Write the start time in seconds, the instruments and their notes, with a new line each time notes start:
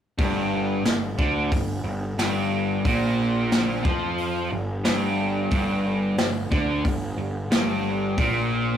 0.18 picked electric bass G1, overdriven electric guitar G2, kick, open hi-hat
0.84 picked electric bass G1, overdriven electric guitar G2, snare, open hi-hat
1.18 picked electric bass D2, overdriven electric guitar D3, kick
1.52 picked electric bass G1, overdriven electric guitar G2, kick, open hi-hat
1.84 picked electric bass G1, overdriven electric guitar G2
2.18 picked electric bass G1, overdriven electric guitar G2, snare, open hi-hat
2.85 picked electric bass A#1, overdriven electric guitar A#2, kick, open hi-hat
3.52 snare, open hi-hat
3.84 picked electric bass F2, overdriven electric guitar F3, kick
4.18 open hi-hat
4.51 picked electric bass G1, overdriven electric guitar G2
4.85 picked electric bass G1, overdriven electric guitar G2, snare, open hi-hat
5.51 picked electric bass G1, overdriven electric guitar G2, kick, open hi-hat
6.18 picked electric bass G1, overdriven electric guitar G2, snare, open hi-hat
6.51 picked electric bass D2, overdriven electric guitar D3, kick
6.84 picked electric bass G1, overdriven electric guitar G2, kick, open hi-hat
7.18 picked electric bass G1, overdriven electric guitar G2
7.50 picked electric bass G1, overdriven electric guitar G2, snare, open hi-hat
8.18 picked electric bass A#1, overdriven electric guitar A#2, kick, open hi-hat